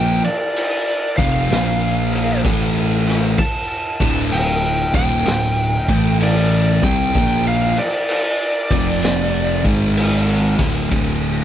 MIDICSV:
0, 0, Header, 1, 5, 480
1, 0, Start_track
1, 0, Tempo, 941915
1, 1723, Time_signature, 4, 2, 24, 8
1, 5831, End_track
2, 0, Start_track
2, 0, Title_t, "Lead electric guitar"
2, 0, Program_c, 0, 29
2, 0, Note_on_c, 0, 79, 102
2, 113, Note_off_c, 0, 79, 0
2, 125, Note_on_c, 0, 74, 109
2, 588, Note_off_c, 0, 74, 0
2, 597, Note_on_c, 0, 77, 104
2, 1223, Note_off_c, 0, 77, 0
2, 1727, Note_on_c, 0, 81, 112
2, 2190, Note_off_c, 0, 81, 0
2, 2203, Note_on_c, 0, 79, 103
2, 2513, Note_off_c, 0, 79, 0
2, 2523, Note_on_c, 0, 79, 93
2, 3143, Note_off_c, 0, 79, 0
2, 3173, Note_on_c, 0, 74, 99
2, 3478, Note_off_c, 0, 74, 0
2, 3485, Note_on_c, 0, 79, 96
2, 3794, Note_off_c, 0, 79, 0
2, 3809, Note_on_c, 0, 77, 91
2, 3960, Note_off_c, 0, 77, 0
2, 3969, Note_on_c, 0, 74, 104
2, 4904, Note_off_c, 0, 74, 0
2, 5831, End_track
3, 0, Start_track
3, 0, Title_t, "Distorted electric guitar"
3, 0, Program_c, 1, 30
3, 0, Note_on_c, 1, 46, 96
3, 0, Note_on_c, 1, 53, 111
3, 0, Note_on_c, 1, 58, 110
3, 112, Note_off_c, 1, 46, 0
3, 115, Note_off_c, 1, 53, 0
3, 115, Note_off_c, 1, 58, 0
3, 603, Note_on_c, 1, 41, 102
3, 607, Note_on_c, 1, 53, 104
3, 608, Note_on_c, 1, 48, 95
3, 761, Note_off_c, 1, 41, 0
3, 761, Note_off_c, 1, 53, 0
3, 763, Note_off_c, 1, 48, 0
3, 766, Note_on_c, 1, 46, 105
3, 767, Note_on_c, 1, 53, 96
3, 769, Note_on_c, 1, 58, 105
3, 1240, Note_off_c, 1, 46, 0
3, 1240, Note_off_c, 1, 53, 0
3, 1241, Note_off_c, 1, 58, 0
3, 1247, Note_on_c, 1, 45, 95
3, 1251, Note_on_c, 1, 52, 99
3, 1251, Note_on_c, 1, 57, 114
3, 1720, Note_off_c, 1, 45, 0
3, 1722, Note_off_c, 1, 52, 0
3, 1722, Note_off_c, 1, 57, 0
3, 2042, Note_on_c, 1, 45, 101
3, 2043, Note_on_c, 1, 38, 104
3, 2045, Note_on_c, 1, 50, 114
3, 2200, Note_off_c, 1, 45, 0
3, 2201, Note_off_c, 1, 38, 0
3, 2201, Note_off_c, 1, 50, 0
3, 2208, Note_on_c, 1, 38, 63
3, 2209, Note_on_c, 1, 45, 79
3, 2458, Note_off_c, 1, 38, 0
3, 2458, Note_off_c, 1, 45, 0
3, 2513, Note_on_c, 1, 39, 102
3, 2514, Note_on_c, 1, 46, 103
3, 2518, Note_on_c, 1, 51, 102
3, 2675, Note_off_c, 1, 39, 0
3, 2676, Note_off_c, 1, 46, 0
3, 2678, Note_off_c, 1, 51, 0
3, 2682, Note_on_c, 1, 38, 69
3, 2685, Note_on_c, 1, 45, 78
3, 2934, Note_off_c, 1, 38, 0
3, 2936, Note_off_c, 1, 45, 0
3, 3000, Note_on_c, 1, 45, 82
3, 3002, Note_on_c, 1, 52, 92
3, 3003, Note_on_c, 1, 57, 103
3, 3469, Note_off_c, 1, 45, 0
3, 3470, Note_off_c, 1, 52, 0
3, 3471, Note_off_c, 1, 57, 0
3, 3479, Note_on_c, 1, 48, 93
3, 3480, Note_on_c, 1, 55, 106
3, 3480, Note_on_c, 1, 60, 99
3, 3638, Note_off_c, 1, 48, 0
3, 3638, Note_off_c, 1, 55, 0
3, 3638, Note_off_c, 1, 60, 0
3, 3642, Note_on_c, 1, 46, 95
3, 3642, Note_on_c, 1, 53, 107
3, 3645, Note_on_c, 1, 58, 122
3, 3947, Note_off_c, 1, 46, 0
3, 3948, Note_off_c, 1, 53, 0
3, 3949, Note_off_c, 1, 58, 0
3, 4438, Note_on_c, 1, 41, 91
3, 4440, Note_on_c, 1, 48, 97
3, 4441, Note_on_c, 1, 53, 115
3, 4908, Note_off_c, 1, 41, 0
3, 4909, Note_off_c, 1, 48, 0
3, 4909, Note_off_c, 1, 53, 0
3, 4912, Note_on_c, 1, 44, 89
3, 4915, Note_on_c, 1, 51, 92
3, 4917, Note_on_c, 1, 56, 107
3, 5385, Note_off_c, 1, 44, 0
3, 5386, Note_off_c, 1, 51, 0
3, 5387, Note_off_c, 1, 56, 0
3, 5392, Note_on_c, 1, 38, 93
3, 5392, Note_on_c, 1, 45, 95
3, 5398, Note_on_c, 1, 50, 106
3, 5547, Note_off_c, 1, 38, 0
3, 5551, Note_off_c, 1, 50, 0
3, 5552, Note_off_c, 1, 45, 0
3, 5554, Note_on_c, 1, 38, 90
3, 5557, Note_on_c, 1, 50, 102
3, 5558, Note_on_c, 1, 45, 109
3, 5831, Note_off_c, 1, 38, 0
3, 5831, Note_off_c, 1, 45, 0
3, 5831, Note_off_c, 1, 50, 0
3, 5831, End_track
4, 0, Start_track
4, 0, Title_t, "Picked electric bass"
4, 0, Program_c, 2, 34
4, 0, Note_on_c, 2, 34, 96
4, 100, Note_off_c, 2, 34, 0
4, 602, Note_on_c, 2, 29, 98
4, 754, Note_off_c, 2, 29, 0
4, 773, Note_on_c, 2, 34, 104
4, 1228, Note_off_c, 2, 34, 0
4, 1248, Note_on_c, 2, 33, 96
4, 1705, Note_off_c, 2, 33, 0
4, 2041, Note_on_c, 2, 26, 102
4, 2193, Note_off_c, 2, 26, 0
4, 2205, Note_on_c, 2, 26, 84
4, 2499, Note_off_c, 2, 26, 0
4, 2522, Note_on_c, 2, 27, 91
4, 2673, Note_off_c, 2, 27, 0
4, 2684, Note_on_c, 2, 26, 85
4, 2978, Note_off_c, 2, 26, 0
4, 2997, Note_on_c, 2, 33, 101
4, 3457, Note_off_c, 2, 33, 0
4, 3480, Note_on_c, 2, 36, 105
4, 3632, Note_off_c, 2, 36, 0
4, 3645, Note_on_c, 2, 34, 101
4, 3938, Note_off_c, 2, 34, 0
4, 4440, Note_on_c, 2, 29, 101
4, 4898, Note_off_c, 2, 29, 0
4, 4918, Note_on_c, 2, 32, 87
4, 5377, Note_off_c, 2, 32, 0
4, 5396, Note_on_c, 2, 26, 108
4, 5549, Note_off_c, 2, 26, 0
4, 5564, Note_on_c, 2, 26, 98
4, 5831, Note_off_c, 2, 26, 0
4, 5831, End_track
5, 0, Start_track
5, 0, Title_t, "Drums"
5, 125, Note_on_c, 9, 49, 53
5, 176, Note_off_c, 9, 49, 0
5, 287, Note_on_c, 9, 49, 80
5, 338, Note_off_c, 9, 49, 0
5, 602, Note_on_c, 9, 36, 110
5, 602, Note_on_c, 9, 49, 58
5, 653, Note_off_c, 9, 36, 0
5, 653, Note_off_c, 9, 49, 0
5, 765, Note_on_c, 9, 49, 78
5, 776, Note_on_c, 9, 38, 127
5, 816, Note_off_c, 9, 49, 0
5, 827, Note_off_c, 9, 38, 0
5, 1082, Note_on_c, 9, 49, 53
5, 1133, Note_off_c, 9, 49, 0
5, 1247, Note_on_c, 9, 36, 111
5, 1249, Note_on_c, 9, 49, 84
5, 1298, Note_off_c, 9, 36, 0
5, 1300, Note_off_c, 9, 49, 0
5, 1562, Note_on_c, 9, 49, 60
5, 1573, Note_on_c, 9, 38, 34
5, 1613, Note_off_c, 9, 49, 0
5, 1624, Note_off_c, 9, 38, 0
5, 1723, Note_on_c, 9, 49, 84
5, 1725, Note_on_c, 9, 36, 100
5, 1774, Note_off_c, 9, 49, 0
5, 1776, Note_off_c, 9, 36, 0
5, 2038, Note_on_c, 9, 49, 64
5, 2040, Note_on_c, 9, 36, 100
5, 2089, Note_off_c, 9, 49, 0
5, 2091, Note_off_c, 9, 36, 0
5, 2204, Note_on_c, 9, 49, 88
5, 2254, Note_off_c, 9, 49, 0
5, 2516, Note_on_c, 9, 49, 61
5, 2518, Note_on_c, 9, 36, 117
5, 2567, Note_off_c, 9, 49, 0
5, 2569, Note_off_c, 9, 36, 0
5, 2679, Note_on_c, 9, 49, 96
5, 2690, Note_on_c, 9, 38, 116
5, 2730, Note_off_c, 9, 49, 0
5, 2741, Note_off_c, 9, 38, 0
5, 2999, Note_on_c, 9, 36, 98
5, 2999, Note_on_c, 9, 49, 57
5, 3050, Note_off_c, 9, 36, 0
5, 3050, Note_off_c, 9, 49, 0
5, 3162, Note_on_c, 9, 49, 94
5, 3212, Note_off_c, 9, 49, 0
5, 3479, Note_on_c, 9, 36, 117
5, 3479, Note_on_c, 9, 49, 65
5, 3530, Note_off_c, 9, 36, 0
5, 3530, Note_off_c, 9, 49, 0
5, 3643, Note_on_c, 9, 49, 77
5, 3644, Note_on_c, 9, 36, 111
5, 3694, Note_off_c, 9, 49, 0
5, 3695, Note_off_c, 9, 36, 0
5, 3957, Note_on_c, 9, 49, 59
5, 4008, Note_off_c, 9, 49, 0
5, 4121, Note_on_c, 9, 49, 85
5, 4172, Note_off_c, 9, 49, 0
5, 4436, Note_on_c, 9, 49, 95
5, 4437, Note_on_c, 9, 36, 110
5, 4487, Note_off_c, 9, 49, 0
5, 4488, Note_off_c, 9, 36, 0
5, 4599, Note_on_c, 9, 49, 84
5, 4610, Note_on_c, 9, 38, 127
5, 4650, Note_off_c, 9, 49, 0
5, 4661, Note_off_c, 9, 38, 0
5, 4915, Note_on_c, 9, 49, 52
5, 4917, Note_on_c, 9, 36, 90
5, 4966, Note_off_c, 9, 49, 0
5, 4968, Note_off_c, 9, 36, 0
5, 5081, Note_on_c, 9, 49, 82
5, 5132, Note_off_c, 9, 49, 0
5, 5397, Note_on_c, 9, 49, 99
5, 5398, Note_on_c, 9, 36, 101
5, 5408, Note_on_c, 9, 38, 35
5, 5447, Note_off_c, 9, 49, 0
5, 5449, Note_off_c, 9, 36, 0
5, 5459, Note_off_c, 9, 38, 0
5, 5561, Note_on_c, 9, 51, 98
5, 5562, Note_on_c, 9, 36, 113
5, 5612, Note_off_c, 9, 51, 0
5, 5613, Note_off_c, 9, 36, 0
5, 5831, End_track
0, 0, End_of_file